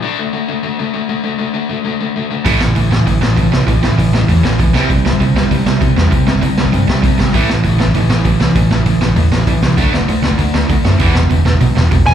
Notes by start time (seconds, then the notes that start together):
0.02 D3 A3 D4
0.18 D3 A3
0.33 D3 A3
0.48 D3 A3
0.63 D3 A3
0.79 D3 A3
0.94 D3 A3
1.09 D3 A3
1.24 D3 A3
1.39 D3 A3
1.54 D3 A3
1.69 D3 A3
1.85 D3 A3
2.01 D3 A3
2.16 D3 A3
2.31 D3 A3
2.45 A1 A2 E3 A3, kick, open hi-hat
2.60 A1 A2 E3, snare
2.69 kick
2.76 A1 A2 E3, kick, open hi-hat
2.91 A1 A2 E3, snare
2.99 kick
3.06 A1 A2 E3, kick, open hi-hat
3.21 A1 A2 E3, snare
3.37 A1 A2 E3, kick, open hi-hat
3.52 C2 A2 E3, snare
3.68 A1 A2 E3, kick, open hi-hat
3.82 A1 A2 E3, snare
3.91 kick
3.98 A1 A2 E3, kick, open hi-hat
4.12 A1 A2 E3, snare
4.21 kick
4.29 E2 A2 E3, kick, open hi-hat
4.43 A1 A2 E3, snare
4.59 B1 A2 E3, kick, open hi-hat
4.75 C2 C3 G3 C4, snare
4.90 C2 C3 G3, kick, open hi-hat
5.04 C2 C3 G3, snare
5.13 kick
5.20 C2 C3 G3, kick, open hi-hat
5.35 C2 C3 G3, snare
5.44 kick
5.51 C2 C3 G3, kick, open hi-hat
5.66 C2 C3 G3, snare
5.81 C2 C3 G3, kick, open hi-hat
5.96 E2 C3 G3, snare
6.12 C2 C3 G3, kick, open hi-hat
6.27 C2 C3 G3, snare
6.35 kick
6.42 C2 C3 G3, kick, open hi-hat
6.57 C2 C3 G3, snare
6.65 kick
6.73 G2 C3 G3, kick, open hi-hat
6.88 C2 C3 G3, snare
7.04 C2 C3 G3, kick, open hi-hat
7.19 G#1 C3 G3, snare
7.34 A1 A2 E3 A3, kick, open hi-hat
7.49 A1 A2 E3, snare
7.57 kick
7.64 A1 A2 E3, kick, open hi-hat
7.79 A1 A2 E3, snare
7.87 kick
7.94 A1 A2 E3, kick, open hi-hat
8.09 A1 A2 E3, snare
8.25 A1 A2 E3, kick, open hi-hat
8.40 C2 A2 E3, snare
8.55 A1 A2 E3, kick, open hi-hat
8.71 A1 A2 E3, snare
8.78 kick
8.86 A1 A2 E3, kick, open hi-hat
9.01 A1 A2 E3, snare
9.09 kick
9.16 E2 A2 E3, kick, open hi-hat
9.31 A1 A2 E3, snare
9.47 A1 A2 E3, kick, open hi-hat
9.62 C2 A2 E3, snare
9.78 D2 D3 A3 D4, kick, open hi-hat
9.92 D2 D3 A3, snare
10.01 kick
10.08 D2 D3 A3, kick, open hi-hat
10.22 D2 D3 A3, snare
10.31 kick
10.38 D2 D3 A3, kick, open hi-hat
10.54 D2 D3 A3, snare
10.69 D2 D3 A3, kick, open hi-hat
10.85 F#2 D3 A3, snare
10.99 E1 E2 B2 E3, kick, open hi-hat
11.15 E1 E2 B2, snare
11.23 kick
11.30 E1 E2 B2, kick, open hi-hat
11.45 E1 E2 B2, snare
11.54 kick
11.61 B1 E2 B2, kick, open hi-hat
11.77 E1 E2 B2, snare
11.91 E1 E2 B2, kick, open hi-hat
12.06 E1 E2 B2 G#5, snare